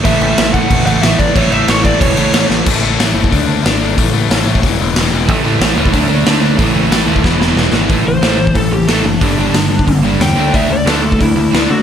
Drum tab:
CC |x-x-x-x-x-x-x-x-|x-x-x-x-x-x-x---|x---------------|----------------|
HH |----------------|----------------|----o---o---o---|o---o---o---o---|
SD |----o-------o---|----o-------o-o-|----o-------o---|----o-------o---|
BD |o-----o-o-----o-|o-----o-o-------|o------oo-------|o------oo-------|

CC |----------------|----------------|----------------|----------------|
HH |o---o---o---o---|o---o-----------|o---o---o---o---|o---o---o---o---|
SD |----o-------o---|----o---o-o-o-o-|----o-------o---|----o-------o---|
BD |o------oo-------|o------oo-------|o------oo-------|o------oo-------|

CC |----------------|
HH |o---o---o---o---|
SD |----o-------o---|
BD |o------oo-------|